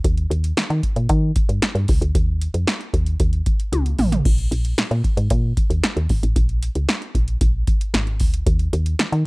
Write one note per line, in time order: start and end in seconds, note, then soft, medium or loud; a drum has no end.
0.04 0.27 D#2 loud
0.04 kick loud
0.04 closed hi-hat loud
0.17 closed hi-hat soft
0.30 0.53 D#2 loud
0.30 closed hi-hat medium
0.44 closed hi-hat medium
0.57 0.62 D#3 medium
0.57 snare loud
0.57 closed hi-hat medium
0.70 0.81 D#3 loud
0.70 closed hi-hat soft
0.83 kick medium
0.83 closed hi-hat medium
0.96 1.08 A#2 medium
0.96 closed hi-hat medium
1.09 1.32 D#3 loud
1.09 kick loud
1.09 closed hi-hat medium
1.36 kick loud
1.36 closed hi-hat medium
1.49 1.60 G2 medium
1.49 closed hi-hat medium
1.62 snare loud
1.62 closed hi-hat medium
1.75 1.86 G2 loud
1.75 closed hi-hat soft
1.88 2.00 C#2 medium
1.88 kick loud
1.88 open hi-hat medium
2.01 2.13 D2 medium
2.01 closed hi-hat medium
2.15 2.48 D#2 loud
2.15 kick loud
2.15 closed hi-hat medium
2.41 closed hi-hat medium
2.54 2.65 F2 medium
2.54 closed hi-hat medium
2.67 snare loud
2.67 closed hi-hat medium
2.81 closed hi-hat soft
2.94 3.16 D#2 loud
2.94 kick medium
2.94 closed hi-hat medium
3.06 closed hi-hat medium
3.20 3.42 D#2 loud
3.20 kick loud
3.20 closed hi-hat medium
3.33 closed hi-hat soft
3.46 kick loud
3.46 closed hi-hat medium
3.60 closed hi-hat medium
3.72 3.95 C#2 medium
3.72 closed hi-hat loud
3.72 high tom medium
3.86 closed hi-hat soft
3.99 4.21 A1 loud
3.99 mid tom loud
3.99 open hi-hat medium
4.12 closed hi-hat medium
4.12 floor tom medium
4.25 4.48 A#1 medium
4.25 kick loud
4.25 crash medium
4.38 closed hi-hat soft
4.51 4.74 A#1 loud
4.51 closed hi-hat medium
4.65 closed hi-hat medium
4.78 4.83 A#2 medium
4.78 snare loud
4.78 closed hi-hat loud
4.91 5.02 A#2 loud
4.91 closed hi-hat soft
5.04 kick medium
5.04 closed hi-hat medium
5.17 5.28 G#2 medium
5.17 closed hi-hat medium
5.30 5.53 A#2 loud
5.30 kick loud
5.30 closed hi-hat loud
5.57 kick loud
5.57 closed hi-hat medium
5.70 5.81 D#2 medium
5.70 closed hi-hat medium
5.83 snare loud
5.83 closed hi-hat medium
5.97 6.08 D#2 loud
5.97 closed hi-hat soft
6.09 6.21 G#1 medium
6.09 kick loud
6.09 open hi-hat medium
6.23 6.34 A1 loud
6.23 closed hi-hat medium
6.36 6.69 A#1 loud
6.36 kick loud
6.36 closed hi-hat medium
6.49 closed hi-hat soft
6.63 closed hi-hat medium
6.75 6.87 C#2 medium
6.75 closed hi-hat medium
6.89 snare loud
6.89 closed hi-hat medium
7.02 closed hi-hat soft
7.15 7.37 A#1 medium
7.15 kick medium
7.15 closed hi-hat medium
7.28 closed hi-hat medium
7.41 7.63 A#1 medium
7.41 kick loud
7.41 closed hi-hat medium
7.67 kick loud
7.67 closed hi-hat medium
7.81 closed hi-hat medium
7.94 8.22 G#1 loud
7.94 snare loud
7.94 closed hi-hat loud
8.07 closed hi-hat soft
8.20 8.43 D2 medium
8.20 kick loud
8.20 open hi-hat medium
8.34 closed hi-hat medium
8.46 8.69 D#2 loud
8.46 kick loud
8.46 closed hi-hat loud
8.59 closed hi-hat soft
8.73 8.95 D#2 loud
8.73 closed hi-hat medium
8.86 closed hi-hat medium
8.99 9.05 D#3 soft
8.99 snare loud
8.99 closed hi-hat medium
9.12 9.23 D#3 loud
9.12 closed hi-hat soft